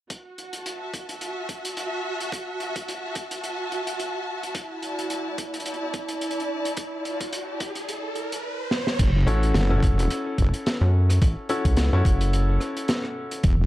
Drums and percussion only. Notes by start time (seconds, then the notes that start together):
0.10 kick, closed hi-hat
0.38 closed hi-hat
0.53 closed hi-hat
0.66 closed hi-hat
0.94 kick, closed hi-hat
1.09 closed hi-hat
1.21 closed hi-hat
1.49 kick, closed hi-hat
1.65 closed hi-hat
1.77 closed hi-hat
2.21 closed hi-hat
2.32 kick, closed hi-hat
2.60 closed hi-hat
2.76 kick, closed hi-hat
2.88 closed hi-hat
3.15 kick, closed hi-hat
3.31 closed hi-hat
3.44 closed hi-hat
3.72 closed hi-hat
3.87 closed hi-hat
4.00 closed hi-hat
4.43 closed hi-hat
4.55 kick, closed hi-hat
4.82 closed hi-hat
4.99 closed hi-hat
5.10 closed hi-hat
5.38 kick, closed hi-hat
5.54 closed hi-hat
5.60 closed hi-hat
5.66 closed hi-hat
5.74 closed hi-hat
5.94 kick, closed hi-hat
6.08 closed hi-hat
6.21 closed hi-hat
6.31 closed hi-hat
6.40 closed hi-hat
6.65 closed hi-hat
6.77 kick, closed hi-hat
7.05 closed hi-hat
7.21 kick, closed hi-hat
7.33 closed hi-hat
7.60 kick, closed hi-hat
7.75 closed hi-hat
7.89 closed hi-hat
8.15 closed hi-hat
8.32 closed hi-hat
8.71 snare
8.87 snare
8.99 kick, closed hi-hat, crash
9.27 closed hi-hat
9.43 closed hi-hat
9.54 snare, closed hi-hat
9.83 kick, cross-stick, closed hi-hat
9.99 closed hi-hat
10.10 cross-stick, closed hi-hat
10.38 kick, closed hi-hat
10.54 closed hi-hat
10.66 snare, closed hi-hat
11.10 cross-stick, closed hi-hat
11.22 kick, closed hi-hat
11.49 closed hi-hat
11.65 kick, closed hi-hat
11.77 snare, closed hi-hat
12.05 kick, closed hi-hat
12.21 closed hi-hat
12.33 closed hi-hat
12.61 cross-stick, closed hi-hat
12.77 closed hi-hat
12.88 snare, closed hi-hat
13.04 cross-stick
13.31 closed hi-hat
13.43 kick, closed hi-hat